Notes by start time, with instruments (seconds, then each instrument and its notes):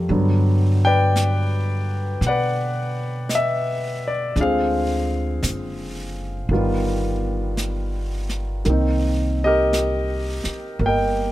Already playing: grand piano A3 F4 G4 A4
0.09 upright bass G2, grand piano D3 F#3 G3 B3, brush sweep
0.85 grand piano B4 D5 G5
1.16 brush sweep, snare, hi-hat pedal
2.21 upright bass B2, brush sweep, snare
2.27 grand piano B4 D5 F#5
3.29 grand piano D#5, brush sweep, snare, hi-hat pedal
3.35 grand piano E5
4.08 grand piano D5
4.36 upright bass D2, grand piano D3 G#3 C4, brush sweep, snare
4.40 grand piano F4 G#4 C5 F5
5.43 upright bass F#1, brush sweep, snare, hi-hat pedal
6.49 upright bass G1, grand piano D#3 G3 B3, brush sweep
6.53 grand piano F4
7.57 brush sweep, snare, hi-hat pedal
8.29 snare
8.65 upright bass C2, grand piano D#3 A#3 C4, brush sweep, snare
8.70 grand piano D#4
9.44 grand piano G4 A#4 D#5
9.73 brush sweep, snare, hi-hat pedal
10.44 muted upright bass stroke, snare
10.79 upright bass G1, grand piano A#3, brush sweep
10.86 grand piano A#4 D#5 G5